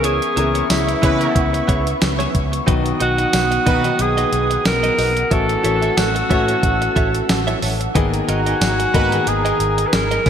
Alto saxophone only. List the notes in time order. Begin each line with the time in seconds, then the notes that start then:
0.05 G#4
0.70 E4
3.02 F#4
4.01 G#4
4.67 A#4
5.33 A4
5.98 F#4
8.29 F#4
9.28 G#4
9.87 B4
9.94 A#4